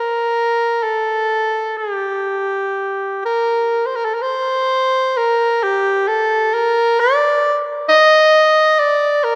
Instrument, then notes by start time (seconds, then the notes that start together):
soprano saxophone
Already playing: A#4
0.83 A4
1.77 G4
3.25 A#4
3.86 C5
3.95 A#4
4.05 A4
4.14 A#4
4.22 C5
5.17 A#4
5.63 G4
6.07 A4
6.54 A#4
7.00 D5
7.88 D#5
8.79 D5
9.24 A#4